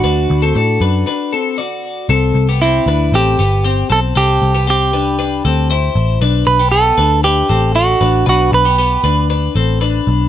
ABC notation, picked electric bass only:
X:1
M:4/4
L:1/8
Q:1/4=117
K:Clyd
V:1 name="Picked electric bass" clef=bass
D,, D,, A,, F,, z4 | C,, C,,2 D,, A,,, G,,,2 B,,, | C,, C,,4 D,,2 A,,, | B,,, B,,,2 D,,2 A,,,2 A,,, |
B,,, B,,,2 D,,2 A,,,2 B,,, |]